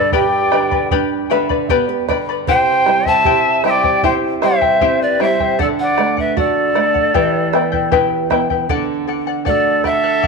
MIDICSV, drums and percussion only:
0, 0, Header, 1, 2, 480
1, 0, Start_track
1, 0, Tempo, 783290
1, 1516, Time_signature, 4, 2, 24, 8
1, 2952, Tempo, 774194
1, 6334, End_track
2, 0, Start_track
2, 0, Title_t, "Bombo"
2, 75, Note_on_c, 9, 43, 76
2, 136, Note_off_c, 9, 43, 0
2, 318, Note_on_c, 9, 37, 52
2, 379, Note_off_c, 9, 37, 0
2, 437, Note_on_c, 9, 43, 63
2, 498, Note_off_c, 9, 43, 0
2, 558, Note_on_c, 9, 43, 74
2, 619, Note_off_c, 9, 43, 0
2, 918, Note_on_c, 9, 43, 61
2, 979, Note_off_c, 9, 43, 0
2, 1037, Note_on_c, 9, 43, 68
2, 1098, Note_off_c, 9, 43, 0
2, 1278, Note_on_c, 9, 37, 47
2, 1278, Note_on_c, 9, 43, 50
2, 1339, Note_off_c, 9, 37, 0
2, 1339, Note_off_c, 9, 43, 0
2, 1516, Note_on_c, 9, 43, 72
2, 1578, Note_off_c, 9, 43, 0
2, 1755, Note_on_c, 9, 37, 52
2, 1816, Note_off_c, 9, 37, 0
2, 1874, Note_on_c, 9, 43, 53
2, 1935, Note_off_c, 9, 43, 0
2, 1991, Note_on_c, 9, 43, 69
2, 2053, Note_off_c, 9, 43, 0
2, 2230, Note_on_c, 9, 37, 46
2, 2291, Note_off_c, 9, 37, 0
2, 2352, Note_on_c, 9, 43, 54
2, 2413, Note_off_c, 9, 43, 0
2, 2470, Note_on_c, 9, 43, 68
2, 2531, Note_off_c, 9, 43, 0
2, 2709, Note_on_c, 9, 37, 45
2, 2771, Note_off_c, 9, 37, 0
2, 2828, Note_on_c, 9, 43, 48
2, 2889, Note_off_c, 9, 43, 0
2, 2946, Note_on_c, 9, 43, 57
2, 3008, Note_off_c, 9, 43, 0
2, 3189, Note_on_c, 9, 37, 43
2, 3251, Note_off_c, 9, 37, 0
2, 3312, Note_on_c, 9, 43, 48
2, 3374, Note_off_c, 9, 43, 0
2, 3433, Note_on_c, 9, 43, 62
2, 3495, Note_off_c, 9, 43, 0
2, 3671, Note_on_c, 9, 37, 48
2, 3733, Note_off_c, 9, 37, 0
2, 3794, Note_on_c, 9, 43, 46
2, 3856, Note_off_c, 9, 43, 0
2, 3915, Note_on_c, 9, 43, 68
2, 3977, Note_off_c, 9, 43, 0
2, 4153, Note_on_c, 9, 37, 46
2, 4215, Note_off_c, 9, 37, 0
2, 4276, Note_on_c, 9, 43, 52
2, 4338, Note_off_c, 9, 43, 0
2, 4396, Note_on_c, 9, 43, 70
2, 4458, Note_off_c, 9, 43, 0
2, 4637, Note_on_c, 9, 37, 53
2, 4699, Note_off_c, 9, 37, 0
2, 4758, Note_on_c, 9, 43, 59
2, 4820, Note_off_c, 9, 43, 0
2, 4875, Note_on_c, 9, 43, 74
2, 4937, Note_off_c, 9, 43, 0
2, 5116, Note_on_c, 9, 37, 55
2, 5116, Note_on_c, 9, 43, 45
2, 5178, Note_off_c, 9, 37, 0
2, 5178, Note_off_c, 9, 43, 0
2, 5237, Note_on_c, 9, 43, 54
2, 5299, Note_off_c, 9, 43, 0
2, 5354, Note_on_c, 9, 43, 71
2, 5416, Note_off_c, 9, 43, 0
2, 5832, Note_on_c, 9, 43, 66
2, 5894, Note_off_c, 9, 43, 0
2, 6067, Note_on_c, 9, 37, 39
2, 6067, Note_on_c, 9, 43, 45
2, 6129, Note_off_c, 9, 37, 0
2, 6129, Note_off_c, 9, 43, 0
2, 6311, Note_on_c, 9, 43, 68
2, 6334, Note_off_c, 9, 43, 0
2, 6334, End_track
0, 0, End_of_file